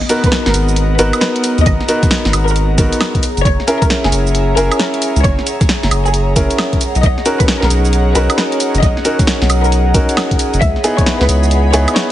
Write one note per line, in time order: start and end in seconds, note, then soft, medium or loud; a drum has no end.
0.00 3.19 B3 medium
0.00 12.12 G#4 medium
0.00 3.19 D#5 medium
0.00 3.19 F#5 medium
0.00 3.19 A#5 medium
0.00 snare soft
0.09 0.97 B3 medium
0.09 0.97 D#4 medium
0.09 0.97 F#4 medium
0.09 0.97 A#4 loud
0.09 open hi-hat loud
0.09 shaker medium
0.24 0.33 B4 medium
0.24 kick loud
0.24 closed hi-hat medium
0.24 shaker soft
0.29 12.12 C#5 medium
0.29 snare loud
0.29 shaker soft
0.46 0.53 G#1 loud
0.46 0.56 A#4 medium
0.46 snare medium
0.54 0.98 G#1 loud
0.54 open hi-hat loud
0.54 shaker medium
0.68 shaker soft
0.76 closed hi-hat medium
0.76 shaker soft
0.91 12.12 F#5 medium
0.99 1.12 G#1 medium
0.99 1.86 B3 loud
0.99 1.86 D#4 medium
0.99 1.87 F#4 medium
0.99 1.87 A#4 loud
0.99 1.14 B4 medium
0.99 open hi-hat loud
0.99 shaker medium
1.03 10.62 A#5 medium
1.13 closed hi-hat medium
1.13 high woodblock medium
1.13 shaker soft
1.21 1.36 B4 medium
1.21 snare loud
1.21 shaker soft
1.36 closed hi-hat medium
1.44 open hi-hat loud
1.44 shaker medium
1.58 1.65 D#2 medium
1.58 closed hi-hat soft
1.58 shaker soft
1.66 1.79 G#1 loud
1.66 1.86 D#5 loud
1.66 kick loud
1.66 closed hi-hat medium
1.66 shaker soft
1.80 snare soft
1.88 2.76 B3 medium
1.88 2.76 D#4 medium
1.88 2.76 F#4 medium
1.88 2.76 A#4 medium
1.88 open hi-hat loud
1.88 shaker medium
2.03 kick loud
2.03 snare soft
2.03 closed hi-hat medium
2.03 shaker soft
2.11 snare loud
2.11 shaker soft
2.25 2.32 G#1 loud
2.25 snare medium
2.33 2.77 G#1 loud
2.33 open hi-hat loud
2.33 high woodblock medium
2.33 shaker medium
2.48 2.65 A#4 loud
2.48 shaker soft
2.56 closed hi-hat medium
2.56 shaker soft
2.78 2.91 G#1 medium
2.78 3.22 B3 medium
2.78 3.22 D#4 medium
2.78 3.22 F#4 medium
2.78 3.22 A#4 medium
2.78 kick loud
2.78 open hi-hat loud
2.78 shaker medium
2.93 closed hi-hat medium
2.93 shaker soft
3.01 snare loud
3.01 high woodblock medium
3.01 shaker soft
3.15 kick medium
3.15 closed hi-hat medium
3.23 6.77 C#5 medium
3.23 6.77 E5 medium
3.23 6.77 G#5 medium
3.23 10.58 A#5 medium
3.23 open hi-hat loud
3.23 shaker medium
3.37 3.44 F#1 medium
3.37 closed hi-hat soft
3.37 shaker soft
3.45 3.58 F#1 loud
3.45 3.65 C#5 loud
3.45 kick loud
3.45 closed hi-hat medium
3.45 shaker soft
3.60 snare soft
3.67 4.55 C#4 medium
3.67 4.55 E4 medium
3.67 4.55 G#4 medium
3.67 4.55 A#4 loud
3.67 open hi-hat loud
3.67 shaker medium
3.82 3.91 A#4 medium
3.82 kick loud
3.82 closed hi-hat medium
3.82 shaker soft
3.90 snare loud
3.90 shaker soft
4.04 4.11 F#1 loud
4.04 4.14 G#4 medium
4.04 snare medium
4.12 4.56 F#1 loud
4.12 open hi-hat loud
4.12 shaker medium
4.27 shaker soft
4.35 closed hi-hat medium
4.35 shaker soft
4.57 4.70 F#1 medium
4.57 5.45 C#4 loud
4.57 5.45 E4 medium
4.57 5.45 G#4 medium
4.57 4.72 A#4 medium
4.57 5.45 A#4 loud
4.57 open hi-hat loud
4.57 shaker medium
4.72 closed hi-hat medium
4.72 high woodblock medium
4.72 shaker soft
4.79 4.95 A#4 medium
4.79 snare loud
4.79 shaker soft
4.94 closed hi-hat soft
5.02 open hi-hat loud
5.02 shaker medium
5.16 5.23 C#2 medium
5.16 closed hi-hat soft
5.16 shaker soft
5.24 5.37 F#1 loud
5.24 5.44 C#5 medium
5.24 kick loud
5.24 closed hi-hat medium
5.24 shaker soft
5.39 snare soft
5.47 open hi-hat loud
5.47 shaker medium
5.61 kick loud
5.61 snare soft
5.61 closed hi-hat medium
5.61 shaker soft
5.69 snare loud
5.69 shaker soft
5.83 5.91 F#1 loud
5.83 snare medium
5.91 6.35 F#1 loud
5.91 open hi-hat loud
5.91 high woodblock medium
5.91 shaker medium
6.06 6.23 G#4 medium
6.06 shaker soft
6.14 closed hi-hat medium
6.14 shaker soft
6.36 6.49 F#1 medium
6.36 6.80 C#4 medium
6.36 6.80 E4 medium
6.36 6.80 G#4 medium
6.36 6.80 A#4 medium
6.36 kick loud
6.36 open hi-hat loud
6.36 shaker medium
6.51 closed hi-hat medium
6.51 shaker soft
6.58 snare loud
6.58 high woodblock medium
6.58 shaker soft
6.73 kick medium
6.73 closed hi-hat medium
6.81 10.58 C#5 medium
6.81 12.12 D#5 medium
6.81 10.58 F#5 medium
6.81 open hi-hat loud
6.81 shaker medium
6.95 7.02 B1 medium
6.95 closed hi-hat soft
6.95 shaker soft
7.03 7.16 B1 loud
7.03 7.23 D#5 loud
7.03 kick loud
7.03 closed hi-hat medium
7.03 shaker soft
7.18 snare soft
7.26 8.13 C#4 medium
7.26 8.13 D#4 medium
7.26 8.13 F#4 medium
7.26 8.13 A#4 loud
7.26 open hi-hat loud
7.26 shaker medium
7.40 7.50 B4 medium
7.40 kick loud
7.40 closed hi-hat medium
7.40 shaker soft
7.48 snare loud
7.48 shaker soft
7.62 7.70 B1 loud
7.62 7.72 A#4 medium
7.62 snare medium
7.70 8.14 B1 loud
7.70 open hi-hat loud
7.70 shaker medium
7.85 shaker soft
7.93 closed hi-hat medium
7.93 shaker soft
8.15 8.28 B1 medium
8.15 9.03 C#4 loud
8.15 9.03 D#4 medium
8.15 9.03 F#4 medium
8.15 9.03 A#4 loud
8.15 8.30 B4 medium
8.15 open hi-hat loud
8.15 shaker medium
8.30 closed hi-hat medium
8.30 high woodblock medium
8.30 shaker soft
8.38 8.53 B4 medium
8.38 snare loud
8.38 shaker soft
8.52 closed hi-hat medium
8.60 open hi-hat loud
8.60 shaker medium
8.74 8.82 F#1 medium
8.74 closed hi-hat soft
8.74 shaker soft
8.82 8.95 B1 loud
8.82 9.02 D#5 medium
8.82 kick loud
8.82 closed hi-hat medium
8.82 shaker soft
8.97 snare soft
9.05 9.93 C#4 medium
9.05 9.93 D#4 medium
9.05 9.93 F#4 medium
9.05 9.93 A#4 loud
9.05 open hi-hat loud
9.05 shaker medium
9.19 kick loud
9.19 snare soft
9.19 closed hi-hat medium
9.19 shaker soft
9.27 snare loud
9.27 shaker soft
9.42 9.49 B1 loud
9.42 snare medium
9.50 9.93 B1 loud
9.50 open hi-hat loud
9.50 high woodblock medium
9.50 shaker medium
9.64 9.81 A#4 medium
9.64 shaker soft
9.72 closed hi-hat medium
9.72 shaker soft
9.94 10.07 B1 medium
9.94 10.61 C#4 medium
9.94 10.61 D#4 medium
9.94 10.61 F#4 medium
9.94 10.61 A#4 medium
9.94 kick loud
9.94 open hi-hat loud
9.94 shaker medium
10.09 closed hi-hat medium
10.09 shaker soft
10.17 snare loud
10.17 high woodblock medium
10.17 shaker soft
10.31 kick medium
10.31 closed hi-hat medium
10.39 open hi-hat loud
10.39 shaker medium
10.54 10.61 F#1 medium
10.54 closed hi-hat soft
10.54 shaker soft
10.61 10.74 C#2 loud
10.61 10.81 E5 loud
10.61 12.12 G#5 medium
10.61 12.12 B5 medium
10.61 kick loud
10.61 closed hi-hat medium
10.61 shaker soft
10.76 snare soft
10.84 11.72 B3 medium
10.84 11.72 D#4 medium
10.84 11.72 E4 medium
10.84 11.72 G#4 loud
10.84 open hi-hat loud
10.84 shaker medium
10.98 11.08 C#5 medium
10.98 kick loud
10.98 closed hi-hat medium
10.98 shaker soft
11.06 snare loud
11.06 shaker soft
11.21 11.28 C#2 loud
11.21 11.30 B4 medium
11.21 snare medium
11.29 11.72 C#2 loud
11.29 open hi-hat loud
11.29 shaker medium
11.43 shaker soft
11.51 closed hi-hat medium
11.51 shaker soft
11.71 11.86 C#2 medium
11.71 12.12 B3 loud
11.71 12.12 D#4 medium
11.71 12.12 E4 medium
11.71 12.12 G#4 loud
11.71 11.89 C#5 medium
11.71 12.12 B5 medium
11.71 open hi-hat loud
11.71 shaker medium
11.88 closed hi-hat medium
11.88 high woodblock medium
11.88 shaker soft
11.96 12.11 C#5 medium
11.96 snare loud
11.96 shaker soft